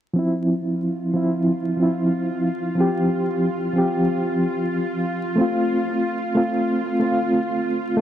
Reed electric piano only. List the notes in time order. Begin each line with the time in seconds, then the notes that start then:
0.13 F3 C4
0.19 E4
1.13 F3 C4 E4
1.77 F3 C4
1.82 E4
2.75 F3 C4
2.80 G4
3.73 F3 C4
3.78 G4
5.36 A3 C4
5.41 F4
6.35 A3 C4 F4
6.99 A3 C4
7.05 F4
7.97 A3